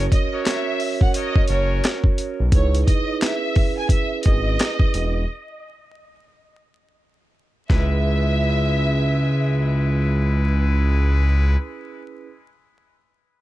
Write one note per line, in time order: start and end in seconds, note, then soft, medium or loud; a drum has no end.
0.00 0.27 C#4 medium
0.00 0.27 F#4 medium
0.00 0.28 A#4 medium
0.00 0.28 C#5 loud
0.11 0.42 D#5 medium
0.11 kick medium
0.11 closed hi-hat medium
0.32 0.43 C#4 medium
0.32 0.44 F#4 medium
0.32 0.77 F#4 medium
0.32 0.77 A#4 medium
0.32 0.44 A#4 medium
0.32 0.77 C#5 loud
0.32 0.45 C#5 loud
0.44 2.39 C#4 medium
0.44 2.39 F#4 medium
0.44 2.40 A#4 medium
0.44 2.40 C#5 loud
0.44 0.97 E5 medium
0.44 snare loud
0.44 clap medium
0.44 closed hi-hat loud
0.80 open hi-hat medium
1.01 1.14 F#5 medium
1.01 kick medium
1.14 1.42 F#4 medium
1.14 1.42 A#4 medium
1.14 1.42 C#5 loud
1.14 1.46 D#5 medium
1.14 closed hi-hat loud
1.36 kick loud
1.48 1.81 F#1 medium
1.48 2.01 C#4 loud
1.48 2.01 F#4 loud
1.48 2.01 A#4 loud
1.48 1.79 C#5 medium
1.48 closed hi-hat medium
1.84 snare loud
1.84 clap medium
1.84 closed hi-hat medium
2.04 kick loud
2.18 closed hi-hat medium
2.40 2.52 B1 medium
2.52 2.84 C#2 loud
2.52 3.03 D#4 medium
2.52 3.03 E4 medium
2.52 3.03 G#4 medium
2.52 3.03 B4 loud
2.52 2.84 C#5 loud
2.52 kick loud
2.52 closed hi-hat medium
2.75 closed hi-hat medium
2.86 3.18 D#5 medium
2.86 kick medium
2.86 closed hi-hat medium
3.07 3.24 D#4 loud
3.07 3.21 E4 medium
3.07 3.21 G#4 medium
3.07 3.22 B4 loud
3.22 5.16 C#4 loud
3.22 5.16 E4 medium
3.22 5.16 G#4 medium
3.22 5.16 B4 loud
3.22 3.74 E5 medium
3.22 snare loud
3.22 clap loud
3.22 closed hi-hat loud
3.56 kick medium
3.56 open hi-hat medium
3.78 3.90 G#5 medium
3.89 4.21 E5 medium
3.89 kick medium
3.89 closed hi-hat loud
4.23 4.57 G#1 medium
4.23 5.24 D#5 medium
4.23 kick loud
4.23 closed hi-hat medium
4.59 snare loud
4.59 clap loud
4.59 closed hi-hat medium
4.79 kick medium
4.94 5.26 E1 loud
4.94 closed hi-hat medium
7.69 11.56 C#2 loud
7.69 11.56 G#3 medium
7.69 12.26 C#4 medium
7.69 12.26 E4 medium
7.69 11.56 E4 medium
7.69 12.26 G#4 medium
7.69 11.56 B4 loud
7.69 12.26 B4 loud
7.69 10.07 E5 medium
7.69 kick loud
7.69 snare medium